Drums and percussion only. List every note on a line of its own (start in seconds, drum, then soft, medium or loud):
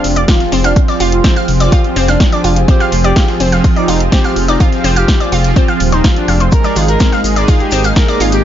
0.04 closed hi-hat medium
0.04 open hi-hat loud
0.16 closed hi-hat medium
0.28 kick loud
0.28 snare loud
0.28 closed hi-hat medium
0.40 snare medium
0.40 closed hi-hat soft
0.52 closed hi-hat medium
0.52 open hi-hat medium
0.64 snare medium
0.64 closed hi-hat medium
0.76 kick loud
0.76 closed hi-hat medium
0.88 snare soft
0.88 closed hi-hat soft
1.00 closed hi-hat medium
1.00 open hi-hat loud
1.12 closed hi-hat medium
1.24 kick loud
1.24 snare loud
1.24 closed hi-hat medium
1.36 closed hi-hat soft
1.48 closed hi-hat medium
1.48 open hi-hat medium
1.60 snare soft
1.60 closed hi-hat medium
1.72 kick loud
1.72 closed hi-hat medium
1.84 closed hi-hat soft
1.96 closed hi-hat medium
1.96 open hi-hat loud
2.08 snare soft
2.08 closed hi-hat medium
2.20 kick loud
2.20 snare loud
2.20 closed hi-hat medium
2.32 closed hi-hat soft
2.44 closed hi-hat medium
2.44 open hi-hat medium
2.56 closed hi-hat medium
2.68 kick loud
2.68 closed hi-hat medium
2.80 snare soft
2.80 closed hi-hat soft
2.92 closed hi-hat medium
2.92 open hi-hat loud
3.04 closed hi-hat soft
3.04 closed hi-hat medium
3.16 kick loud
3.16 snare loud
3.16 closed hi-hat medium
3.28 snare medium
3.28 closed hi-hat soft
3.40 closed hi-hat medium
3.40 open hi-hat loud
3.52 snare soft
3.52 closed hi-hat medium
3.64 kick loud
3.64 closed hi-hat medium
3.64 open hi-hat medium
3.76 closed hi-hat soft
3.88 closed hi-hat medium
3.88 open hi-hat loud
4.00 closed hi-hat medium
4.12 kick loud
4.12 snare loud
4.12 closed hi-hat medium
4.24 snare medium
4.24 closed hi-hat soft
4.36 closed hi-hat medium
4.36 open hi-hat medium
4.48 snare medium
4.48 closed hi-hat medium
4.60 kick loud
4.60 closed hi-hat medium
4.72 snare soft
4.72 closed hi-hat soft
4.84 closed hi-hat medium
4.84 open hi-hat loud
4.96 closed hi-hat medium
5.08 kick loud
5.08 snare loud
5.08 closed hi-hat medium
5.20 closed hi-hat soft
5.32 closed hi-hat medium
5.32 open hi-hat loud
5.44 snare soft
5.44 closed hi-hat medium
5.56 kick loud
5.56 closed hi-hat medium
5.68 closed hi-hat soft
5.80 closed hi-hat medium
5.80 open hi-hat loud
5.92 snare soft
5.92 closed hi-hat medium
6.04 kick loud
6.04 snare loud
6.04 closed hi-hat medium
6.16 closed hi-hat soft
6.28 closed hi-hat medium
6.28 open hi-hat medium
6.40 closed hi-hat medium
6.52 kick loud
6.52 closed hi-hat medium
6.52 maracas medium
6.64 snare soft
6.64 closed hi-hat soft
6.64 maracas soft
6.76 closed hi-hat medium
6.76 open hi-hat loud
6.76 maracas medium
6.88 closed hi-hat medium
6.88 closed hi-hat soft
6.88 maracas soft
7.00 kick loud
7.00 snare loud
7.00 closed hi-hat medium
7.00 maracas medium
7.12 snare medium
7.12 closed hi-hat soft
7.12 maracas soft
7.24 closed hi-hat medium
7.24 open hi-hat medium
7.24 maracas medium
7.36 snare soft
7.36 closed hi-hat medium
7.36 maracas soft
7.48 kick loud
7.48 closed hi-hat medium
7.48 open hi-hat medium
7.48 maracas medium
7.60 closed hi-hat soft
7.60 maracas soft
7.71 closed hi-hat medium
7.71 open hi-hat loud
7.71 maracas loud
7.84 closed hi-hat medium
7.84 maracas soft
7.96 kick loud
7.96 snare loud
7.96 closed hi-hat medium
7.96 maracas medium
8.08 snare medium
8.08 closed hi-hat soft
8.08 maracas soft
8.20 closed hi-hat medium
8.20 open hi-hat medium
8.20 maracas medium
8.32 snare medium
8.32 closed hi-hat medium
8.32 maracas soft